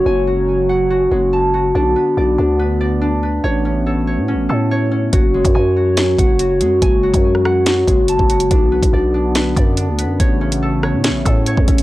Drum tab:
HH |----------------|----------------|----------------|x--x----x-x-x-x-|
SD |----------------|----------------|----------------|--------o-------|
BD |----------------|----------------|----------------|o--o------o-----|

HH |x--x----x-x-x-xx|x--x----x-x-x-x-|x--x----x-x-x-xx|
SD |-----rr-o-------|--------o-------|------r-o-------|
BD |o--o------o--o--|o--o------o-----|o---------o--oo-|